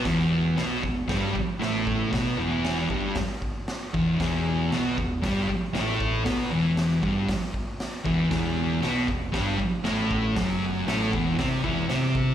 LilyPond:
<<
  \new Staff \with { instrumentName = "Distorted electric guitar" } { \clef bass \time 4/4 \key e \minor \tempo 4 = 117 <e, e>4 <b, b>8 e,8 <g, g>8 r8 <a, a>4 | <b, b>8 <e, e>4 <g, g>8 r4. <e, e>8 | <e, e>4 <b, b>8 e,8 <g, g>8 r8 <a, a>4 | <b, b>8 <e, e>4 <g, g>8 r4. <e, e>8 |
<e, e>4 <b, b>8 e,8 <g, g>8 r8 <a, a>4 | <fis, fis>4 <a, a>8 <e, e>8 <c c'>8 <e, e>8 <c c'>4 | }
  \new Staff \with { instrumentName = "Picked electric bass" } { \clef bass \time 4/4 \key e \minor e,,4 b,,8 e,,8 g,,8 r8 a,,4 | b,,8 e,,4 g,,8 r4. e,,8 | e,,4 b,,8 e,,8 g,,8 r8 a,,4 | b,,8 e,,4 g,,8 r4. e,,8 |
e,,4 b,,8 e,,8 g,,8 r8 a,,4 | fis,,4 a,,8 e,,8 c,8 e,,8 c,4 | }
  \new DrumStaff \with { instrumentName = "Drums" } \drummode { \time 4/4 <hho bd sn>4 <hho sn>8 bd8 <hho bd sn>8 bd8 <hho sn>8 bd8 | <hho bd sn>4 <hho sn>8 bd8 <hho bd sn>8 bd8 <hho sn>8 bd8 | <hho bd sn>4 <hho sn>8 bd8 <hho bd sn>8 bd8 <hho sn>8 bd8 | <hho bd sn>4 <hho sn>8 bd8 <hho bd sn>8 bd8 <hho sn>8 bd8 |
<hho bd sn>4 <hho sn>8 bd8 <hho bd sn>8 bd8 <hho sn>8 bd8 | <hho bd sn>4 <hho sn>8 bd8 <hho bd sn>8 bd8 <hho sn>8 bd8 | }
>>